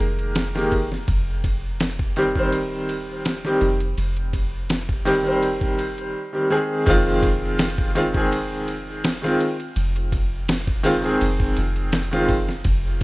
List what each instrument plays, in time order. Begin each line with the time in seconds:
Already playing: upright piano D#3 G#3 A#3 A#4
0.00 808-style bass F1, ride
0.19 ride
0.35 snare, ride
0.55 upright piano D#3 G#3 A#3 G4, snare
0.72 kick, ride
0.92 snare
1.08 808-style bass F1, kick, ride
1.44 kick, ride
1.80 snare, ride
1.99 kick
2.16 upright piano D#3 G3 C4 G4, ride
2.35 upright piano D#3 G3 C4 C5, kick
2.52 808-style bass D#1, ride
2.89 ride
3.25 snare, ride
3.45 upright piano D#3 G3 C4 G4, snare
3.61 808-style bass F1, ride
3.80 ride
3.97 808-style bass F1, ride
4.17 ride
4.33 kick, ride
4.70 snare, ride
4.89 kick
5.05 upright piano D#3 G3 C4 G4, open hi-hat
5.23 upright piano D#3 G3 C4, ride
5.27 upright piano C5
5.43 ride
5.61 kick
5.79 ride
5.98 ride
6.33 upright piano D#3 G3 C4 G4
6.50 upright piano D#3 G#3 C4 G#4
6.86 808-style bass F1, upright piano D#3 G#3 C4 F4, kick, ride
7.23 kick, ride
7.59 snare, ride
7.78 kick
7.95 upright piano D#3 G#3 C4 F4, ride
8.13 upright piano D#3 G#3 C4, kick
8.17 upright piano G#4
8.32 ride
8.68 ride
9.04 snare, ride
9.22 upright piano D#3 G#3 C4 F4, snare
9.40 ride
9.60 ride
9.76 808-style bass F1, ride
9.96 ride
10.12 kick, ride
10.48 snare, ride
10.67 kick
10.83 upright piano D#3 G#3 C4 F4, open hi-hat
11.01 upright piano D#3 G#3 C4, ride
11.05 upright piano G#4
11.21 808-style bass F1, ride
11.40 kick
11.57 808-style bass F1, ride
11.76 ride
11.92 snare, ride
12.11 upright piano D#3 G#3 C4 F4, snare
12.28 kick, ride
12.49 snare
12.64 808-style bass F1, kick, ride